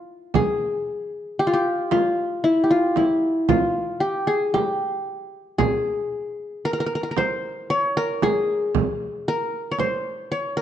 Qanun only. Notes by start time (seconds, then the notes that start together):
Already playing: F4
0.35 G#4
1.39 G4
1.47 F4
1.54 G4
1.92 F4
2.44 E4
2.64 G4
2.71 F4
2.97 E4
3.49 F4
4.00 G4
4.27 G#4
4.54 G4
5.58 G#4
6.65 A#4
6.73 A#4
6.80 A#4
6.86 A#4
6.95 A#4
7.03 A#4
7.11 A#4
7.17 C5
7.70 C#5
7.97 A#4
8.23 G#4
9.28 A#4
9.71 C#5
9.79 C5
10.32 C#5
10.57 A#4